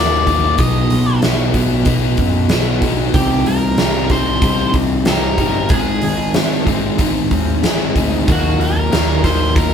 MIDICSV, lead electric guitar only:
0, 0, Header, 1, 2, 480
1, 0, Start_track
1, 0, Key_signature, -3, "minor"
1, 0, Tempo, 641026
1, 437, Time_signature, 4, 2, 24, 8
1, 7293, End_track
2, 0, Start_track
2, 0, Title_t, "Lead electric guitar"
2, 0, Program_c, 0, 29
2, 0, Note_on_c, 0, 74, 93
2, 444, Note_off_c, 0, 74, 0
2, 447, Note_on_c, 0, 75, 100
2, 891, Note_off_c, 0, 75, 0
2, 2353, Note_on_c, 0, 67, 74
2, 2598, Note_on_c, 0, 70, 83
2, 2601, Note_off_c, 0, 67, 0
2, 3076, Note_off_c, 0, 70, 0
2, 3079, Note_on_c, 0, 72, 93
2, 3527, Note_off_c, 0, 72, 0
2, 3796, Note_on_c, 0, 70, 105
2, 4268, Note_on_c, 0, 68, 95
2, 4291, Note_off_c, 0, 70, 0
2, 4722, Note_off_c, 0, 68, 0
2, 6229, Note_on_c, 0, 66, 93
2, 6438, Note_off_c, 0, 66, 0
2, 6464, Note_on_c, 0, 70, 85
2, 6915, Note_off_c, 0, 70, 0
2, 6918, Note_on_c, 0, 72, 101
2, 7158, Note_off_c, 0, 72, 0
2, 7161, Note_on_c, 0, 70, 94
2, 7293, Note_off_c, 0, 70, 0
2, 7293, End_track
0, 0, End_of_file